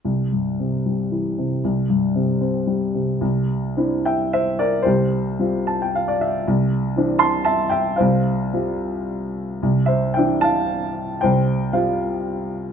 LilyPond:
<<
  \new Staff \with { instrumentName = "Grand piano" } { \time 3/4 \key c \mixolydian \tempo 4 = 113 << { r2. | r2. | r4. <e'' g''>8 <c'' e''>8 <bes' d''>8 | <g' c''>2 r4 |
r4. <a'' c'''>8 <e'' a''>8 <e'' g''>8 | <c'' f''>2 r4 | r8 <c'' e''>8 <e'' g''>8 <f'' a''>4. | <c'' g''>4 <c'' f''>4 r4 | } \\ { r2. | r2. | r2. | r4. a''16 g''16 f''16 d''16 e''8 |
r2. | r2. | r2. | r2. | } >> }
  \new Staff \with { instrumentName = "Grand piano" } { \clef bass \time 3/4 \key c \mixolydian c,8 g,8 c8 g8 e8 c8 | c,8 g,8 c8 c'8 g8 c8 | c,4 <c' d' e'>4 r4 | c,4 <g c' f'>4 r4 |
c,4 <e c' d'>4 r4 | c,4 <g c' f'>4 r4 | c,4 <e c' d'>4 r4 | c,4 <g c' f'>4 r4 | }
>>